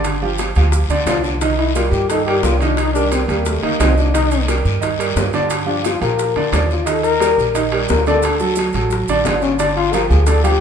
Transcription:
Already playing: upright bass G1, grand piano D3 D4 D5
0.04 high bongo, high timbale, long guiro, maracas
0.22 grand piano F3 F4 G4, high bongo
0.38 high bongo, high timbale, low timbale, short guiro, maracas
0.55 upright bass D2, grand piano F3 F4 G4, high bongo, high timbale, short guiro, maracas
0.72 high bongo, long guiro, maracas
0.89 upright bass D2, grand piano D3 D4 D5, high timbale, maracas
1.06 upright bass C2, grand piano D3 D4 D5, trombone F4, high bongo, low bongo, high timbale, low timbale, short guiro, maracas
1.23 trombone D4, high bongo, short guiro, maracas
1.40 grand piano D#3 D#4 D#5, trombone D#4, high bongo, high timbale, long guiro, maracas
1.57 trombone E4, high timbale
1.74 grand piano G3 G4 A#4, trombone F4, high bongo, high timbale, low timbale, short guiro, maracas
1.91 upright bass G2, trombone G4, short guiro, maracas
2.09 grand piano D#3 D#4 D#5, trombone A4, high bongo, high timbale, long guiro, maracas
2.27 grand piano G3 G4 A#4, trombone G4, high timbale
2.43 upright bass C2, trombone F4, high bongo, low bongo, low timbale, short guiro, maracas
2.59 grand piano D#3 D#4 D#5, trombone D4, high timbale, short guiro, maracas
2.77 trombone D#4, high bongo, high timbale, long guiro, maracas
2.94 grand piano G3 G4 A#4, trombone D4, high bongo, maracas
3.12 trombone C4, high bongo, high timbale, low timbale, short guiro, maracas
3.28 upright bass D#2, grand piano G3 G4 A#4, trombone A#3, high bongo, high timbale, short guiro, maracas
3.45 trombone A3, high bongo, long guiro, maracas
3.62 upright bass D2, grand piano D#3 D#4 D#5, trombone A#3, high timbale
3.79 upright bass C2, grand piano D#3 D#4 D#5, trombone C4, high bongo, low bongo, high timbale, low timbale, short guiro, maracas
3.97 trombone D4, high bongo, short guiro, maracas
4.14 grand piano D#3 D#4 D#5, trombone D#4, high bongo, high timbale, long guiro, maracas
4.31 high timbale, maracas
4.48 grand piano G3 G4 A#4, high bongo, high timbale, low timbale, short guiro, maracas
4.65 upright bass G2, short guiro, maracas
4.80 grand piano D#3 D#4 D#5, high bongo, high timbale, long guiro, maracas
4.99 grand piano G3 G4 A#4, high timbale, maracas
5.16 upright bass G2, high bongo, low bongo, low timbale, short guiro, maracas
5.33 grand piano D3 D4 D5, high timbale, short guiro, maracas
5.50 high bongo, high timbale, long guiro, maracas
5.66 grand piano F3 F4 G4, trombone D4, high bongo
5.85 trombone F4, high bongo, high timbale, low timbale, short guiro, maracas
6.01 upright bass A#2, grand piano F3 F4 G4, trombone A#4, high bongo, high timbale, short guiro, maracas
6.19 high bongo, long guiro, maracas
6.36 upright bass F2, grand piano D3 D4 D5, high timbale
6.52 upright bass D#2, grand piano D3 D4 D5, high bongo, low bongo, high timbale, low timbale, short guiro, maracas
6.70 trombone F4, high bongo, short guiro, maracas
6.86 grand piano D#3 D#4 D#5, trombone A4, high bongo, high timbale, long guiro, maracas
7.03 trombone A#4, high timbale, maracas
7.20 grand piano G3 G4 A#4, high bongo, high timbale, low timbale, short guiro, maracas
7.38 upright bass A#1, short guiro, maracas
7.55 grand piano D#3 D#4 D#5, high bongo, high timbale, long guiro, maracas
7.72 grand piano G3 G4 A#4, trombone G4, high timbale
7.88 upright bass D2, trombone A#4, high bongo, low bongo, low timbale, short guiro, maracas
8.06 grand piano D3 D4 D5, trombone A4, high timbale, short guiro, maracas
8.22 high bongo, high timbale, long guiro, maracas
8.39 grand piano F#3 F#4 A4, high bongo, maracas
8.55 high bongo, high timbale, low timbale, short guiro, maracas
8.73 upright bass A1, grand piano F#3 F#4 A4, high bongo, high timbale, short guiro, maracas
8.91 high bongo, long guiro, maracas
9.08 upright bass A1, grand piano D3 D4 D5, high timbale, maracas
9.25 upright bass G1, grand piano D3 D4 D5, high bongo, low bongo, high timbale, low timbale, short guiro, maracas
9.41 trombone C#4, high bongo, short guiro, maracas
9.59 grand piano D3 D4 D5, trombone D4, high bongo, high timbale, long guiro, maracas
9.77 trombone F4, high timbale
9.93 grand piano F3 F4 G4, trombone A#4, high bongo, high timbale, low timbale, short guiro, maracas
10.10 upright bass D2, trombone G#4, short guiro, maracas
10.26 grand piano D3 D4 D5, trombone A4, high bongo, high timbale, long guiro, maracas
10.43 grand piano F3 F4 G4, trombone G4, high timbale, maracas

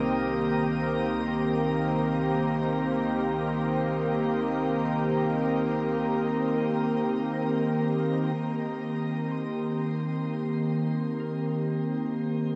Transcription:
Already playing: double bass section C2, analog synth pad D#3 A#3 C4 G4 A#4
9.31 clean electric guitar C6
11.20 clean electric guitar A#4

